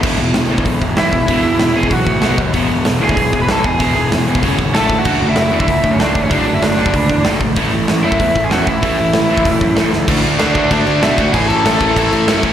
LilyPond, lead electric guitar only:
\new Staff \with { instrumentName = "Lead electric guitar" } { \time 4/4 \key e \mixolydian \tempo 4 = 191 r2. <e' e''>4~ | <e' e''>4. <gis' gis''>8 <fis' fis''>4. r8 | r4. <gis' gis''>4~ <gis' gis''>16 <b' b''>16 <a' a''>8 <gis' gis''>8~ | <gis' gis''>4 r2 <a' a''>8. <fis' fis''>16~ |
<fis' fis''>8. <e' e''>4 <e' e''>4 <cis' cis''>16 <d' d''>8. <cis' cis''>16 | <d' d''>8. <e' e''>16 <d' d''>2 r4 | r4. <e' e''>4~ <e' e''>16 <gis' gis''>16 <fis' fis''>8 <e' e''>8~ | <e' e''>2. r4 |
r4 <d' d''>4 <d' d''>4 <e' e''>8 <fis' fis''>8 | <gis' gis''>8 <a' a''>2. r8 | }